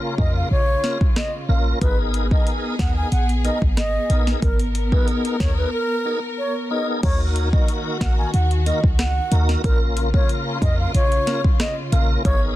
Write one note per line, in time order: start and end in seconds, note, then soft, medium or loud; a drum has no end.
0.00 1.79 C#3 medium
0.00 0.15 A#3 medium
0.00 0.15 C#4 medium
0.00 0.15 F4 medium
0.00 1.79 F4 medium
0.00 0.15 A#4 medium
0.18 0.43 F2 loud
0.18 0.48 A#3 medium
0.18 0.49 C#4 medium
0.18 0.49 F4 medium
0.18 0.49 A#4 medium
0.18 0.34 D#5 medium
0.18 kick medium
0.36 0.50 F5 medium
0.51 0.76 A#1 loud
0.51 0.98 C#5 loud
0.83 0.98 A#3 medium
0.83 0.98 C#4 medium
0.83 0.98 F4 medium
0.83 0.98 A#4 medium
0.83 snare medium
1.01 kick medium
1.16 1.32 D#5 medium
1.16 cross-stick medium
1.16 snare loud
1.49 1.74 A#1 medium
1.49 1.79 A#3 medium
1.49 1.79 C#4 medium
1.49 1.79 F4 medium
1.49 1.79 A#4 medium
1.49 1.64 F5 medium
1.81 2.31 G#1 loud
1.81 2.27 B3 medium
1.81 6.99 B3 medium
1.81 2.27 D#4 medium
1.81 2.27 G#4 medium
1.81 4.40 G#4 medium
1.81 2.27 A#4 loud
1.81 1.97 B4 loud
1.81 kick loud
1.81 closed hi-hat medium
2.14 closed hi-hat medium
2.31 2.76 B3 medium
2.31 2.76 D#4 medium
2.31 2.76 G#4 medium
2.31 2.76 A#4 medium
2.31 2.45 D#5 medium
2.31 kick loud
2.47 closed hi-hat medium
2.79 3.04 D#2 medium
2.79 3.09 B3 medium
2.79 3.09 D#4 medium
2.79 3.10 G#4 medium
2.79 3.10 A#4 medium
2.79 2.95 F#5 medium
2.79 kick medium
2.79 snare loud
2.79 closed hi-hat medium
2.97 3.10 G#5 medium
3.12 3.50 A#1 medium
3.12 3.28 F#5 medium
3.12 closed hi-hat medium
3.29 closed hi-hat soft
3.44 3.59 B3 medium
3.44 3.59 D#4 medium
3.44 3.59 G#4 medium
3.44 3.59 A#4 medium
3.44 3.60 D#5 medium
3.44 closed hi-hat medium
3.62 3.98 G#1 loud
3.62 kick medium
3.77 4.24 D#5 medium
3.77 cross-stick medium
3.77 snare loud
3.77 closed hi-hat medium
4.09 4.35 A#1 medium
4.09 4.40 B3 medium
4.09 4.40 D#4 medium
4.09 4.40 G#4 medium
4.09 4.40 A#4 medium
4.09 closed hi-hat medium
4.27 snare medium
4.42 4.92 G#1 loud
4.42 7.01 A#4 medium
4.42 4.58 A#4 medium
4.42 kick loud
4.42 closed hi-hat medium
4.59 closed hi-hat medium
4.75 closed hi-hat medium
4.92 5.36 B3 medium
4.92 5.37 D#4 medium
4.92 5.37 G#4 medium
4.92 5.37 A#4 medium
4.92 5.06 B4 medium
4.92 kick loud
5.08 closed hi-hat medium
5.25 closed hi-hat medium
5.40 5.65 D#2 medium
5.40 5.70 B3 medium
5.40 5.70 D#4 medium
5.40 5.70 G#4 medium
5.40 5.71 A#4 medium
5.40 5.56 C#5 medium
5.40 kick medium
5.40 snare loud
5.40 closed hi-hat medium
5.58 5.71 B4 medium
5.73 6.20 A#4 loud
6.05 6.20 B3 medium
6.05 6.20 D#4 medium
6.05 6.20 G#4 medium
6.05 6.20 A#4 medium
6.38 6.54 C#5 medium
6.70 7.01 B3 medium
6.70 7.01 D#4 medium
6.70 7.01 G#4 medium
6.70 7.01 A#4 medium
6.70 6.86 D#5 medium
7.03 7.53 D#2 loud
7.03 9.62 D#3 medium
7.03 7.49 A#3 medium
7.03 7.49 D#4 medium
7.03 9.62 F#4 medium
7.03 7.49 F#4 medium
7.03 7.49 A#4 loud
7.03 7.19 C#5 loud
7.03 kick loud
7.03 closed hi-hat medium
7.03 crash medium
7.36 closed hi-hat medium
7.53 7.97 A#3 medium
7.53 7.97 D#4 medium
7.53 7.97 F#4 medium
7.53 7.98 A#4 medium
7.53 7.67 D#5 medium
7.53 kick loud
7.68 closed hi-hat medium
8.01 8.26 A#1 loud
8.01 8.31 A#3 medium
8.01 8.31 D#4 medium
8.01 8.31 F#4 medium
8.01 8.31 A#4 medium
8.01 8.17 F#5 medium
8.01 kick medium
8.01 snare loud
8.01 closed hi-hat medium
8.18 8.32 G#5 medium
8.34 8.72 D#2 loud
8.34 8.49 F#5 medium
8.34 closed hi-hat medium
8.51 closed hi-hat medium
8.66 8.80 A#3 medium
8.66 8.80 D#4 medium
8.66 8.81 F#4 medium
8.66 8.81 A#4 medium
8.66 8.82 D#5 medium
8.66 closed hi-hat medium
8.84 9.20 C#2 medium
8.84 kick medium
8.99 9.46 F#5 medium
8.99 cross-stick medium
8.99 snare loud
8.99 closed hi-hat medium
9.31 9.56 D#2 medium
9.31 9.62 A#3 medium
9.31 9.62 D#4 medium
9.31 9.62 F#4 medium
9.31 9.62 A#4 medium
9.31 closed hi-hat medium
9.49 snare medium
9.64 10.14 A#1 loud
9.64 12.22 C#3 medium
9.64 10.10 A#3 medium
9.64 10.10 C#4 medium
9.64 12.22 F4 medium
9.64 10.10 F4 medium
9.64 9.80 A#4 medium
9.64 10.10 A#4 loud
9.64 kick loud
9.64 closed hi-hat medium
9.97 closed hi-hat medium
10.14 10.58 A#3 medium
10.14 10.58 C#4 medium
10.14 10.58 F4 medium
10.14 10.58 A#4 medium
10.14 10.28 C#5 medium
10.14 kick medium
10.29 closed hi-hat medium
10.62 10.87 F2 medium
10.62 10.92 A#3 medium
10.62 10.92 C#4 medium
10.62 10.92 F4 medium
10.62 10.92 A#4 medium
10.62 10.77 D#5 medium
10.62 kick medium
10.62 closed hi-hat medium
10.79 10.93 F5 medium
10.95 11.19 A#1 loud
10.95 11.41 C#5 loud
10.95 closed hi-hat medium
11.12 closed hi-hat medium
11.27 11.41 A#3 medium
11.27 11.41 C#4 medium
11.27 11.41 F4 medium
11.27 11.42 A#4 medium
11.27 snare medium
11.27 closed hi-hat medium
11.44 kick medium
11.60 11.75 D#5 medium
11.60 cross-stick loud
11.60 snare loud
11.60 closed hi-hat medium
11.92 12.17 A#1 loud
11.92 12.22 A#3 medium
11.92 12.23 C#4 medium
11.92 12.23 F4 medium
11.92 12.23 A#4 medium
11.92 12.08 F5 medium
11.92 closed hi-hat medium
12.25 12.56 G#1 loud
12.25 12.56 B3 medium
12.25 12.56 D#4 medium
12.25 12.56 G#4 medium
12.25 12.56 A#4 medium
12.25 12.40 C#5 loud
12.25 kick loud
12.25 closed hi-hat medium